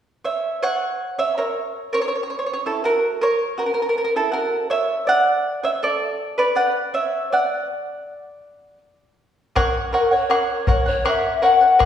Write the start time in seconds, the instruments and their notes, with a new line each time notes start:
0.25 charango C#5 E5
0.63 charango C#5 F#5
1.18 charango C#5 E5
1.38 charango A#4 C#5
1.93 charango A#4 C#5
2.02 charango C#5
2.08 charango C#5
2.15 charango C#5
2.23 charango C#5
2.30 charango C#5
2.39 charango C#5
2.46 charango C#5
2.53 charango C#5
2.66 charango E4 A4
2.84 charango F#4 A#4
3.21 charango A#4 C#5
3.58 charango F#4 A#4
3.66 charango A#4
3.74 charango A#4
3.82 charango A#4
3.89 charango A#4
3.98 charango A#4
4.04 charango A#4
4.16 charango E4 A4
4.32 charango F#4 A#4
4.70 charango C#5 E5
5.07 charango D5 F#5
5.63 charango C#5 E5
5.83 charango A4 D5
6.38 charango B4 D5
6.55 charango D5 F#5
6.94 charango C#5 E5
7.32 charango D5 F#5
9.56 charango A#4 C#5 F#5, bombo rim, bombo low
9.93 charango A#4 C#5 F#5
9.97 pan flute A#4
10.11 charango C#5 F#5, pan flute C#5
10.30 charango A#4 C#5 F#5, bombo rim
10.67 charango A#4 C#5 F#5, bombo low
10.86 pan flute C#5, charango C#5 F#5
11.05 charango A#4 C#5 F#5, pan flute E5, bombo rim
11.25 bombo rim
11.42 charango A#4 C#5 F#5, pan flute F#5
11.61 charango C#5 F#5
11.79 charango A#4 C#5 F#5, bombo rim, bombo low